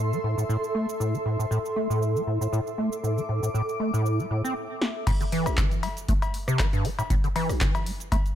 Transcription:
0.00 0.14 A2 loud
0.00 4.56 A4 medium
0.00 4.56 E5 medium
0.00 2.49 C6 medium
0.12 0.19 G3 loud
0.12 shaker soft
0.24 0.35 A2 medium
0.38 0.44 A2 medium
0.38 shaker medium
0.49 0.57 A2 loud
0.49 shaker medium
0.64 shaker soft
0.75 0.86 A3 medium
0.89 shaker medium
1.00 1.15 A2 medium
1.00 shaker medium
1.14 1.18 G3 medium
1.14 shaker soft
1.26 1.37 A2 medium
1.39 1.46 A2 medium
1.39 shaker medium
1.51 1.59 A2 medium
1.51 shaker medium
1.66 shaker soft
1.76 1.88 A3 medium
1.90 2.17 A2 loud
1.90 shaker medium
2.03 shaker medium
2.15 2.22 G3 loud
2.15 shaker soft
2.27 2.39 A2 medium
2.34 4.56 D6 medium
2.41 2.47 A2 medium
2.41 shaker medium
2.53 2.60 A2 loud
2.53 shaker medium
2.67 shaker soft
2.78 2.89 A3 medium
2.93 shaker medium
3.04 3.19 A2 medium
3.04 shaker medium
3.17 3.21 G3 medium
3.17 shaker soft
3.29 3.40 A2 medium
3.43 3.49 A2 medium
3.43 shaker medium
3.54 3.62 A2 loud
3.54 shaker medium
3.69 shaker soft
3.80 3.91 A3 medium
3.94 4.21 A2 loud
3.94 shaker medium
4.06 shaker medium
4.19 4.25 G3 loud
4.19 shaker soft
4.31 4.42 A2 medium
4.44 4.54 C4 loud
4.44 shaker medium
4.82 snare medium
5.07 5.11 A2 loud
5.07 kick loud
5.07 closed hi-hat loud
5.07 cowbell medium
5.07 crash loud
5.07 shaker medium
5.21 5.25 D3 medium
5.21 closed hi-hat soft
5.21 shaker soft
5.32 5.48 E3 loud
5.32 open hi-hat loud
5.46 5.59 A1 loud
5.46 cross-stick medium
5.46 closed hi-hat soft
5.46 cowbell medium
5.46 shaker medium
5.57 5.85 E3 medium
5.57 kick loud
5.57 clap loud
5.57 closed hi-hat loud
5.57 shaker medium
5.71 closed hi-hat soft
5.71 shaker soft
5.83 5.88 G3 medium
5.83 open hi-hat loud
5.83 cowbell medium
5.97 closed hi-hat soft
5.97 shaker medium
6.08 6.13 A3 medium
6.08 kick loud
6.08 closed hi-hat loud
6.08 shaker medium
6.22 closed hi-hat soft
6.22 cowbell medium
6.22 shaker soft
6.34 open hi-hat loud
6.48 6.61 C3 loud
6.48 cross-stick medium
6.48 closed hi-hat soft
6.48 shaker medium
6.59 6.67 E3 medium
6.59 kick loud
6.59 clap loud
6.59 closed hi-hat loud
6.59 cowbell medium
6.59 shaker medium
6.73 6.86 G2 loud
6.73 closed hi-hat soft
6.73 shaker soft
6.85 6.89 G3 medium
6.85 open hi-hat loud
6.99 7.02 A2 medium
6.99 closed hi-hat soft
6.99 cowbell medium
6.99 shaker medium
7.10 7.15 A2 loud
7.10 kick loud
7.10 closed hi-hat loud
7.10 shaker medium
7.24 7.28 D3 medium
7.24 closed hi-hat soft
7.24 shaker soft
7.36 7.51 E3 loud
7.36 open hi-hat loud
7.36 cowbell medium
7.49 7.62 A1 loud
7.49 cross-stick medium
7.49 open hi-hat medium
7.49 shaker medium
7.61 7.88 E3 medium
7.61 kick loud
7.61 clap loud
7.61 closed hi-hat medium
7.61 shaker medium
7.75 closed hi-hat soft
7.75 cowbell medium
7.75 shaker soft
7.86 7.91 G3 medium
7.86 open hi-hat loud
8.00 closed hi-hat soft
8.00 shaker medium
8.12 8.16 A3 medium
8.12 kick loud
8.12 closed hi-hat loud
8.12 cowbell medium
8.12 shaker medium
8.26 closed hi-hat soft
8.26 shaker soft

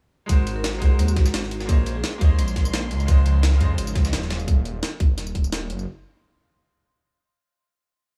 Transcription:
0.26 0.80 G#1 loud
0.26 0.77 G#3 medium
0.26 1.67 G#3 medium
0.26 1.67 C4 medium
0.26 0.78 D#4 medium
0.26 0.80 F#4 medium
0.26 1.68 F#4 medium
0.26 1.67 A#4 medium
0.26 kick loud
0.26 closed hi-hat medium
0.26 ride medium
0.26 tambourine soft
0.31 0.80 A#4 medium
0.31 0.81 C5 loud
0.47 closed hi-hat medium
0.47 ride medium
0.47 tambourine soft
0.56 0.80 A#4 medium
0.64 snare loud
0.64 closed hi-hat loud
0.64 ride medium
0.64 tambourine medium
0.73 snare medium
0.78 0.97 C2 medium
0.78 1.65 G#3 loud
0.78 1.66 D#4 medium
0.78 1.67 F#4 medium
0.78 1.06 G#4 medium
0.78 kick medium
0.78 closed hi-hat medium
0.78 ride medium
0.83 1.68 A#4 medium
0.83 1.68 C5 loud
0.99 1.18 D#2 medium
0.99 closed hi-hat loud
0.99 ride medium
0.99 tambourine medium
1.08 1.29 F#4 medium
1.08 ride soft
1.08 tambourine medium
1.17 1.25 G#1 medium
1.17 kick loud
1.17 snare soft
1.17 closed hi-hat medium
1.17 ride medium
1.26 snare medium
1.26 tambourine medium
1.34 1.68 G#1 medium
1.34 snare loud
1.34 closed hi-hat loud
1.34 ride medium
1.34 tambourine medium
1.43 snare soft
1.51 closed hi-hat medium
1.51 ride medium
1.60 snare medium
1.60 tambourine soft
1.66 2.02 A#1 medium
1.66 3.07 G#3 medium
1.66 2.17 A#3 medium
1.66 4.45 C#4 medium
1.66 4.28 D#4 medium
1.66 2.18 F4 medium
1.66 2.19 G#4 medium
1.66 2.19 C5 medium
1.66 4.28 C6 medium
1.66 kick loud
1.66 closed hi-hat loud
1.66 ride medium
1.66 tambourine soft
1.71 2.20 C#5 medium
1.71 2.21 D#5 loud
1.86 closed hi-hat medium
1.86 ride medium
1.86 tambourine soft
1.95 2.21 G#4 medium
2.04 snare loud
2.04 closed hi-hat loud
2.04 ride medium
2.04 tambourine soft
2.13 ride soft
2.18 2.40 D#2 medium
2.18 3.05 A#3 loud
2.18 3.06 F4 medium
2.18 3.06 G#4 medium
2.18 3.07 C5 medium
2.18 kick loud
2.18 closed hi-hat medium
2.18 ride medium
2.23 3.07 C#5 medium
2.23 3.08 D#5 loud
2.39 2.92 A#1 medium
2.39 closed hi-hat loud
2.39 ride medium
2.39 tambourine medium
2.48 tambourine medium
2.56 kick medium
2.56 snare soft
2.56 closed hi-hat medium
2.56 ride medium
2.65 ride soft
2.65 tambourine medium
2.73 snare loud
2.73 closed hi-hat loud
2.73 ride medium
2.73 tambourine medium
2.83 ride soft
2.91 3.07 C#2 medium
2.91 closed hi-hat medium
2.91 ride medium
3.00 ride soft
3.00 tambourine soft
3.05 3.59 C#2 loud
3.05 3.56 C#3 medium
3.05 4.29 F3 medium
3.05 3.58 G#3 medium
3.05 3.59 F4 medium
3.05 kick loud
3.05 closed hi-hat medium
3.05 ride medium
3.05 tambourine soft
3.10 3.59 C5 medium
3.10 3.60 D#5 loud
3.26 closed hi-hat medium
3.26 ride medium
3.26 tambourine soft
3.43 snare loud
3.43 closed hi-hat loud
3.43 ride medium
3.43 tambourine soft
3.52 snare medium
3.58 3.76 F2 medium
3.58 4.28 C#3 loud
3.58 4.29 G#3 medium
3.58 4.30 F4 medium
3.58 kick medium
3.58 closed hi-hat medium
3.58 ride medium
3.62 4.30 C5 medium
3.62 4.31 D#5 loud
3.78 3.97 G#1 medium
3.78 closed hi-hat loud
3.78 ride medium
3.78 tambourine medium
3.87 ride soft
3.87 tambourine medium
3.95 4.14 C#2 medium
3.95 kick loud
3.95 snare soft
3.95 closed hi-hat medium
3.95 ride medium
4.05 snare medium
4.05 tambourine medium
4.13 4.81 D#1 medium
4.13 snare loud
4.13 closed hi-hat loud
4.13 ride medium
4.13 tambourine medium
4.22 snare soft
4.30 4.48 F#3 medium
4.30 4.48 F4 medium
4.30 4.48 G#4 medium
4.30 snare loud
4.30 closed hi-hat medium
4.30 ride medium
4.40 ride soft
4.40 tambourine soft
4.48 kick loud
4.48 closed hi-hat medium
4.48 tambourine soft
4.65 closed hi-hat medium
4.65 tambourine soft
4.83 snare loud
4.83 closed hi-hat medium
4.83 tambourine soft
5.00 5.19 G#1 medium
5.00 kick loud
5.00 closed hi-hat medium
5.18 5.71 D#1 medium
5.18 snare soft
5.18 closed hi-hat medium
5.18 tambourine soft
5.27 tambourine medium
5.35 kick medium
5.35 closed hi-hat medium
5.44 tambourine medium
5.52 snare loud
5.52 closed hi-hat medium
5.52 tambourine soft
5.70 5.86 F#1 medium
5.70 closed hi-hat medium
5.79 tambourine soft

